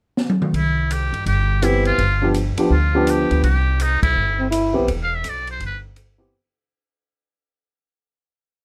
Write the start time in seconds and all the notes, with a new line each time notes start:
0.17 snare
0.30 high tom
0.42 mid tom
0.54 C2 E4, kick, ride
0.91 G4, hi-hat pedal, ride
1.13 G2, ride
1.26 G1 G4, kick, ride
1.62 E3 B3 C4 E4 G4, hi-hat pedal, ride
1.85 F4, ride
1.98 G1, kick, ride
2.22 F3 B3 D4 G4
2.34 hi-hat pedal, ride
2.57 F3 B3 D4 G4, muted upright bass stroke, ride
2.70 D2 F4, kick
2.95 F3 B3 D4 G4
3.07 G4, hi-hat pedal, ride
3.31 D2, ride
3.43 C2 G4, kick, ride
3.80 D#4, hi-hat pedal, ride
4.02 B1 E4, kick, ride
4.16 G1
4.39 C4
4.51 E4, hi-hat pedal, ride
4.73 B1 E3 B3 C4 G4
4.88 E1, kick, ride
5.03 F5
5.15 E5
5.24 B1, hi-hat pedal, ride
5.29 D5
5.47 C5, ride
5.60 G1, kick, ride
5.66 B4
5.96 hi-hat pedal, ride
6.18 E3 B3 C4 G4